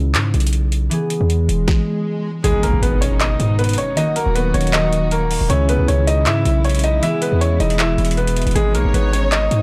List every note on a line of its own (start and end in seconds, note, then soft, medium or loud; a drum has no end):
0.00 0.16 C#2 loud
0.00 0.96 C#3 medium
0.00 0.96 G#3 medium
0.00 0.97 A#3 medium
0.00 2.01 E4 medium
0.00 0.31 F#4 medium
0.14 0.33 G#2 loud
0.14 clap loud
0.14 closed hi-hat medium
0.34 0.89 B1 loud
0.34 closed hi-hat soft
0.40 closed hi-hat medium
0.47 closed hi-hat medium
0.53 closed hi-hat medium
0.72 closed hi-hat medium
0.90 2.49 E3 medium
0.90 4.03 B3 medium
0.90 3.20 G#4 medium
0.90 closed hi-hat medium
0.90 swell medium
1.10 closed hi-hat medium
1.21 1.48 E2 loud
1.30 closed hi-hat medium
1.49 1.67 E1 loud
1.49 closed hi-hat medium
1.68 kick loud
1.68 snare medium
2.42 2.65 G#1 loud
2.42 3.96 B2 medium
2.42 3.96 D#3 medium
2.42 4.02 G#3 medium
2.42 3.96 G#3 medium
2.42 2.61 G#3 medium
2.42 5.15 D#4 medium
2.42 3.96 D#4 medium
2.42 2.60 G#4 loud
2.42 4.03 B4 medium
2.42 closed hi-hat medium
2.42 impact medium
2.63 2.73 B1 loud
2.63 2.80 A#3 medium
2.63 2.79 A#4 medium
2.63 closed hi-hat medium
2.73 2.82 G#1 loud
2.82 3.37 G#1 loud
2.82 2.99 B3 medium
2.82 2.99 B4 medium
2.82 closed hi-hat medium
3.01 3.18 C#4 medium
3.01 3.17 C#5 medium
3.01 closed hi-hat medium
3.20 3.57 D#4 medium
3.20 3.57 D#5 medium
3.20 clap loud
3.20 closed hi-hat medium
3.40 3.76 G#2 loud
3.40 closed hi-hat medium
3.59 3.75 B3 medium
3.59 3.75 B4 medium
3.59 closed hi-hat soft
3.64 closed hi-hat medium
3.69 closed hi-hat medium
3.73 closed hi-hat medium
3.78 3.94 C#4 medium
3.78 3.94 C#5 medium
3.78 closed hi-hat medium
3.95 5.55 D#3 medium
3.95 5.48 D#3 medium
3.95 5.48 F#3 medium
3.95 5.48 A#3 medium
3.95 7.09 A#3 medium
3.95 4.14 D#4 medium
3.95 5.48 F#4 medium
3.95 6.42 F#4 loud
3.95 4.13 D#5 loud
3.95 closed hi-hat medium
4.16 4.33 A#3 medium
4.16 4.32 A#4 medium
4.16 closed hi-hat medium
4.26 4.53 D#1 loud
4.35 4.52 B3 medium
4.35 4.51 B4 medium
4.35 closed hi-hat medium
4.54 5.37 D#1 loud
4.54 4.71 C#4 medium
4.54 4.70 C#5 medium
4.54 closed hi-hat medium
4.61 closed hi-hat medium
4.67 closed hi-hat medium
4.73 5.10 D#4 medium
4.73 5.09 D#5 medium
4.73 clap loud
4.73 closed hi-hat medium
4.93 closed hi-hat medium
5.11 5.48 A#3 medium
5.11 5.48 A#4 medium
5.11 closed hi-hat medium
5.31 open hi-hat medium
5.41 5.49 D#1 loud
5.48 5.78 C#2 loud
5.48 7.08 C#3 medium
5.48 7.01 C#3 medium
5.48 7.01 E3 medium
5.48 9.62 G#3 medium
5.48 7.08 G#3 medium
5.48 5.66 C#4 medium
5.48 8.53 E4 medium
5.48 8.13 E4 medium
5.48 5.66 C#5 loud
5.48 closed hi-hat medium
5.69 5.86 B3 medium
5.69 5.85 B4 medium
5.69 closed hi-hat medium
5.79 5.88 C#2 loud
5.88 6.28 C#2 loud
5.88 6.05 C#4 medium
5.88 6.04 C#5 medium
5.88 closed hi-hat medium
6.07 6.24 D#4 medium
6.07 6.23 D#5 medium
6.07 closed hi-hat medium
6.26 6.44 G#2 loud
6.26 6.63 E4 medium
6.26 6.62 E5 loud
6.26 clap loud
6.26 closed hi-hat medium
6.45 7.00 B1 loud
6.45 closed hi-hat medium
6.64 6.81 C#4 medium
6.64 6.81 C#5 medium
6.64 closed hi-hat soft
6.70 closed hi-hat medium
6.75 closed hi-hat medium
6.79 closed hi-hat medium
6.84 7.00 D#4 medium
6.84 7.00 D#5 medium
6.84 closed hi-hat medium
7.01 9.62 B2 medium
7.01 8.61 E3 medium
7.01 8.54 E3 medium
7.01 9.62 B3 medium
7.01 7.19 E4 medium
7.01 9.32 G#4 medium
7.01 7.19 E5 loud
7.01 closed hi-hat medium
7.22 7.38 B3 medium
7.22 7.38 B4 medium
7.22 closed hi-hat medium
7.32 7.59 E2 loud
7.41 7.58 C#4 medium
7.41 7.57 C#5 medium
7.41 closed hi-hat medium
7.60 7.97 E1 loud
7.60 7.77 D#4 medium
7.60 7.76 D#5 medium
7.60 closed hi-hat medium
7.70 closed hi-hat medium
7.79 8.16 E4 medium
7.79 8.15 E5 medium
7.79 clap loud
7.79 closed hi-hat medium
7.98 8.45 E1 loud
7.98 closed hi-hat soft
8.05 closed hi-hat medium
8.11 closed hi-hat medium
8.17 8.54 B3 medium
8.17 8.53 B4 medium
8.17 closed hi-hat soft
8.27 closed hi-hat medium
8.36 closed hi-hat medium
8.36 open hi-hat medium
8.42 closed hi-hat medium
8.47 8.55 E1 loud
8.47 closed hi-hat medium
8.51 9.62 G#3 medium
8.51 closed hi-hat soft
8.55 8.76 G#1 loud
8.55 9.62 D#3 medium
8.55 8.72 G#3 medium
8.55 9.62 D#4 medium
8.55 8.72 G#4 loud
8.55 9.62 B4 medium
8.55 closed hi-hat medium
8.75 8.84 B1 loud
8.75 8.91 A#3 medium
8.75 8.91 A#4 medium
8.75 9.62 C#5 medium
8.75 closed hi-hat medium
8.85 8.93 G#1 loud
8.94 9.49 G#1 loud
8.94 9.11 B3 medium
8.94 9.10 B4 medium
8.94 closed hi-hat medium
9.13 9.29 C#4 medium
9.13 9.29 C#5 medium
9.13 closed hi-hat medium
9.32 9.62 D#4 medium
9.32 9.62 D#5 medium
9.32 clap loud
9.32 closed hi-hat medium
9.51 9.62 G#2 loud
9.51 closed hi-hat medium